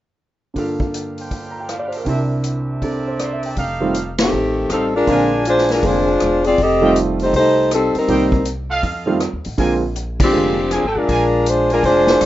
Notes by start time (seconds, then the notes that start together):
0.54 G2 D3 A#3 D4 F4 G4 F5, kick, open hi-hat
0.59 A4
0.80 kick
0.94 closed hi-hat
1.18 C5 G5, open hi-hat
1.31 kick, open hi-hat
1.51 A#5
1.60 G5
1.69 F5, cross-stick, closed hi-hat
1.79 D5
1.88 C5
1.92 open hi-hat
1.97 A#4
2.04 C2 C3 D4 E4 C5 E5, kick, open hi-hat
2.08 A#4
2.44 closed hi-hat
2.81 C3 C4 D4 A4 A#4 D5, kick, open hi-hat
3.01 E6
3.08 C5 D6
3.19 D5 C6, cross-stick, closed hi-hat
3.30 E5 A#5
3.39 A5, open hi-hat
3.46 G5
3.56 F1 D#4 G4 A4 F5, kick, open hi-hat
3.80 D#3 G3 A3 C4 F4
3.94 closed hi-hat
4.18 D#3 A3 C4 G4, snare, ride
4.33 A1
4.70 A1 G3 C4 D#4 G4 A4 F5, cross-stick, closed hi-hat
4.95 G#3 D4 F4 A#4
5.07 A#1 D3 G#3 A#3 C4 D4 F4 A#4 C5 G#5, kick, open hi-hat
5.45 G#3 D4 F4 C5, closed hi-hat
5.58 snare
5.68 G#3 D4 F4 A#4, snare, open hi-hat
5.83 F1 D3 G#3 A#3 C4 D4 F4 C5, kick, open hi-hat
6.20 E1, cross-stick, closed hi-hat
6.44 C4 F4 G#4 D5, open hi-hat
6.58 F1 C4 D#5, kick, open hi-hat
6.62 G4 A4
6.81 D#3 G3 A3 C4 F4 A4 D#5 G5
6.96 closed hi-hat
7.19 A3 D#4 G4 C5, open hi-hat
7.33 C2 A3 D#4 G4 C5, kick, open hi-hat
7.71 G3 C4 D#4 A4, cross-stick, closed hi-hat
7.95 G3 D#4 A#4, muted upright bass stroke, open hi-hat
7.99 C4
8.08 C2 D#3 G3 A#3 C4 D#4 G4 A#4 C5 G5, kick, open hi-hat
8.32 kick
8.45 closed hi-hat
8.70 F4 A4 D#5 F5
8.83 F2, kick, open hi-hat
9.06 D#3 G3 A3 C4 F4
9.20 cross-stick, closed hi-hat
9.33 D#2
9.44 A1, open hi-hat
9.58 A#1 D3 G#3 A#3 C4 D4 F4 A#4 C5 G#5, kick, open hi-hat
9.96 closed hi-hat
10.20 F3 C4 D4 G4, kick, crash
10.33 F1 D3 G#3 A#3 C4 F4
10.71 F3 C4 D4 G#4 A#4 C5 G#5, cross-stick, closed hi-hat
10.83 G#1 A4
10.95 A1 G#3 D4 F4 A#4
11.09 A#1 D4 A#4 C5 G#5, kick, open hi-hat
11.46 G#3 D4 F4 C5, closed hi-hat
11.70 G#3 D4 F4 A#4 C5 G#5, open hi-hat
11.83 F1 G#3 D4 F4 C5, kick, open hi-hat
12.07 snare
12.21 E1, cross-stick, closed hi-hat